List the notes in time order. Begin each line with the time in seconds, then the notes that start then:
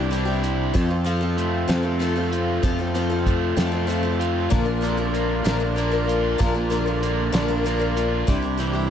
Already playing: C2 C3 E3 G3 D4 E4 G4 C5
0.11 G3 D4 E4 G4, closed hi-hat
0.25 D4 E4 G4
0.43 E4, closed hi-hat
0.73 F2 F3 C4 F4 A4 C5, kick, closed hi-hat
0.89 C4 F4 A4
1.04 F3 C4 F4 A4, closed hi-hat
1.21 C4 F4 A4
1.37 A3, closed hi-hat
1.68 F2 F3 C4 F4 A4, snare, closed hi-hat
1.83 C4 F4 A4
1.99 F3 A3 C4 F4 A4, closed hi-hat
2.16 C4 F4 A4
2.32 F4, closed hi-hat
2.62 F2 F3 C4 F4 A4, kick, closed hi-hat
2.79 C4 F4 A4
2.94 F3 C4 F4 A4, closed hi-hat
3.10 C4 F4 A4
3.26 A3, kick, closed hi-hat
3.56 F2 F3 C4 F4 A4, snare, closed hi-hat
3.72 C4 F4 A4
3.87 F3 A3 C4 F4 A4, closed hi-hat
4.03 C4 F4 A4
4.20 F4, closed hi-hat
4.50 A#1 A#2 D3 F3 A#3 D4 F4 A#4 D5, kick, closed hi-hat
4.65 F3 A#3 D4 A#4
4.81 D3 F3 A#3 D4 A#4, closed hi-hat
4.97 F3 A#3 D4 A#4
5.14 A#3, closed hi-hat
5.44 A#1 A#2 D3 F3 A#3 D4 A#4, snare, closed hi-hat
5.60 F3 A#3 D4 A#4
5.76 F3 A#3 D4 A#4, closed hi-hat
5.92 F3 A#3 D4 A#4
6.08 F4, closed hi-hat
6.38 A#1 A#2 D3 F3 A#3 D4 A#4, kick, closed hi-hat
6.54 F3 A#3 D4 A#4
6.70 D3 F3 A#3 D4 A#4, closed hi-hat
6.86 F3 A#3 D4 A#4
7.02 A#3, closed hi-hat
7.32 A#1 A#2 D3 F3 A#3 D4 A#4, snare, closed hi-hat
7.48 F3 A#3 D4 A#4
7.64 F3 A#3 D4 A#4, closed hi-hat
7.79 F3 A#3 D4 A#4
7.96 F4, closed hi-hat
8.27 C2 C3 G3 D4 E4 G4 C5, kick, closed hi-hat
8.42 D4 E4 G4
8.57 E3 G3 D4 E4 G4, closed hi-hat
8.73 D4 E4 G4